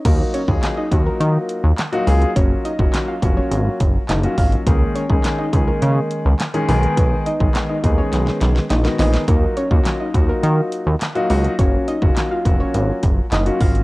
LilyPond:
<<
  \new Staff \with { instrumentName = "Synth pluck" } { \time 4/4 \key ees \minor \tempo 4 = 104 <bes bes'>8 <des' des''>8 r16 <ees' ees''>16 r16 <bes bes'>8. r4. | <des' des''>8 <ees' ees''>8 r16 <f' f''>16 r16 <des' des''>8. r8 <ees' ees''>16 r16 <f' f''>16 r16 | <bes bes'>8 <des' des''>8 r16 <ees' ees''>16 r16 <bes bes'>8. r4. | <ces' ces''>8 <ees' ees''>8 r16 <ees' ees''>16 r16 <des' des''>8. r8 <ees' ees''>16 r16 <ees' ees''>16 r16 |
<bes bes'>8 <des' des''>8 r16 <ees' ees''>16 r16 <bes bes'>8. r4. | <des' des''>8 <ees' ees''>8 r16 <f' f''>16 r16 <des' des''>8. r8 <ees' ees''>16 r16 <f' f''>16 r16 | }
  \new Staff \with { instrumentName = "Grand piano" } { \time 4/4 \key ees \minor <ges bes ees' f' ges'>8 r16 <ges bes ees' f' aes'>8 r16 <ges bes ees' f' ges'>4~ <ges bes ees' f' ges'>16 r8 <ges bes ees' f' ges'>16 <ges bes ees' f' aes'>8 | <ges bes des' f' ges'>8 r16 <ges bes des' f' ges'>8 r16 <ges bes des' f' ges'>4~ <ges bes des' f' ges'>16 r8 <ges bes des' f' ges'>16 <ges bes des' ges'>8 | <ees aes des' ees' aes'>8 r16 <ees aes des' ees' aes'>8 r16 <ees aes des' ees' aes'>4~ <ees aes des' ees' aes'>16 r8 <ees aes des' ees' aes'>16 <ees aes ces' ees' aes'>8~ | <ees aes ces' ees' aes'>8 r16 <ees aes ces' ees' aes'>8 r16 <ees aes ces' ees' aes'>4~ <ees aes ces' ees' aes'>16 r8 <ees aes ces' ees' ges'>16 <ees aes ces' ees' aes'>8 |
<ges bes ees' f' ges'>8 r16 <ges bes ees' f' ges'>8 r16 <ges bes ees' f' ges'>4~ <ges bes ees' f' ges'>16 r8 <ges bes ees' f' ges'>16 <ges bes ees' f' ges'>8 | <ges bes des' f' ges'>8 r16 <ges bes des' f' ges'>8 r16 <ges bes des' f' ges'>4~ <ges bes des' f' ges'>16 r8 <ges bes des' f' ges'>16 <ges bes des' f' ges'>8 | }
  \new Staff \with { instrumentName = "Analog synth bass" } { \clef bass \time 4/4 \key ees \minor ees,8 r16 ees,16 r8 ees,8 ees8 r16 ees,16 r8 des,8 | ges,,8 r16 ges,,16 r8 f,,8 aes,,8 ges,,8 ges,,8 aes,,8 | des,8 r16 des,16 r8 des,8 des8 r16 des,16 r8 ces,8 | ces,8 r16 ces,16 r8 ees,8 ces,8 ces,8 bes,,8 bes,,8 |
ees,8 r16 ees,16 r8 ees,8 ees8 r16 ees,16 r8 des,8 | ges,,8 r16 ges,,16 r8 f,,8 aes,,8 ges,,8 ges,,8 aes,,8 | }
  \new DrumStaff \with { instrumentName = "Drums" } \drummode { \time 4/4 <cymc hh bd>8 hh16 bd16 <hc hh sn>8 <hh bd>8 hh8 hh8 <hc hh sn>16 hh16 hho16 hh16 | <hh bd>8 hh16 bd16 <hc hh sn>8 <hh bd>8 hh8 <hh bd>8 <hc hh sn>16 hh16 <hho bd>16 hh16 | <hh bd>8 hh16 bd16 <hc hh sn>8 <hh bd>8 hh8 hh8 <hc hh sn>16 hh16 hho16 hh16 | <hh bd>8 hh16 bd16 <hc hh sn>8 <hh bd>8 <hh sn>16 sn16 <hh sn>16 sn16 <hh sn>16 <hh sn>16 <hho sn>16 <hh sn>16 |
<hh bd>8 hh16 bd16 <hc hh sn>8 <hh bd>8 hh8 hh8 <hc hh sn>16 hh16 hho16 hh16 | <hh bd>8 hh16 bd16 <hc hh sn>8 <hh bd>8 hh8 <hh bd>8 <hc hh sn>16 hh16 <hho bd>16 hh16 | }
>>